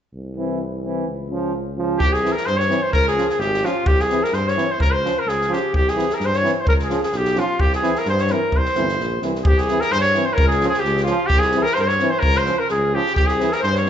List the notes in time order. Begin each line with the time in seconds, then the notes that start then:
0.14 C2
0.36 E3 C4
0.83 E3 C4
1.06 C#2
1.31 F3 C#4
1.77 F3 C#4
1.99 C2 G4, kick
2.12 G#4, snare
2.23 E3 C4, snare
2.32 A#4
2.37 A#4, snare
2.46 G2 C5, snare
2.57 C#5, snare
2.61 C#5
2.69 E3 C4, snare
2.83 C5
2.92 C#2 A#4, kick
3.08 G#4, snare
3.16 F3 C#4, snare
3.29 G#4, snare
3.38 G#1 G4, snare
3.43 G4
3.54 snare
3.63 F3 C#4 F4, snare
3.85 C2 G4, kick
4.00 G#4, snare
4.10 E3 C4, snare
4.23 A#4, snare
4.33 G2 C5, snare
4.48 C#5, snare
4.56 E3 C4, snare
4.71 C5
4.78 C#2 A#4, kick
4.83 A#4
4.92 C5
5.04 F3 C#4, snare
5.18 A#4
5.25 C#2 G#4, snare
5.30 G#4
5.41 snare
5.49 F3 C#4 G4
5.53 G4, snare
5.74 C2 G4, kick
5.88 G#4, snare
5.95 E3 C4, snare
6.10 A#4, snare
6.14 A#4
6.20 G2, snare
6.25 C5
6.33 C#5, snare
6.43 E3 C4, snare
6.53 C#5
6.59 C5
6.67 C#2 A#4, kick
6.79 snare
6.84 G#4
6.90 F3 C#4, snare
7.03 G#4, snare
7.12 B1 G4, snare
7.17 G4
7.25 snare
7.35 F3 C#4 F4, snare
7.39 F4
7.59 C2 G4, kick
7.73 G#4, snare
7.82 E3 C4, snare
7.96 A#4, snare
8.00 A#4
8.05 G2 C5, snare
8.11 C5
8.18 C#5, snare
8.23 C#5
8.27 E3 C4 A#4, snare
8.34 A#4
8.52 C2, kick
8.57 C5
8.66 snare
8.75 G1 E3 C4, snare
8.89 snare
9.00 A#1, snare
9.21 C2 E3 C4, snare
9.35 snare
9.42 C2 G4 G#4, kick
9.57 G#4, snare
9.68 E3 C4, snare
9.80 A#4, snare
9.92 G2 C5, snare
10.01 C#5, snare
10.05 C#5
10.14 E3 C4, snare
10.25 C5
10.33 A#4
10.38 C#2, kick
10.47 G#4, snare
10.61 F3 C#4, snare
10.69 G#4
10.74 snare
10.80 G4
10.85 C#2 G4, snare
10.97 snare
11.04 C#4 F4, snare
11.08 F3
11.27 G4, kick
11.32 C2
11.39 G#4, snare
11.52 C4, snare
11.56 E3
11.63 A#4, snare
11.74 C5, snare
11.78 G2 A#4 C5
11.83 C5 C#5
11.88 C#5, snare
11.99 E3 C4, snare
12.10 C5
12.19 A#4, kick
12.23 C#2
12.35 C5, snare
12.46 F3 C#4, snare
12.59 A#4
12.69 C#2 G#4, snare
12.93 F3 C#4 G4
13.06 snare
13.16 C2 G4, kick
13.27 G#4, snare
13.38 E3 C4, snare
13.49 A#4, snare
13.60 G2 C5, snare
13.74 C#5, snare
13.86 C4, snare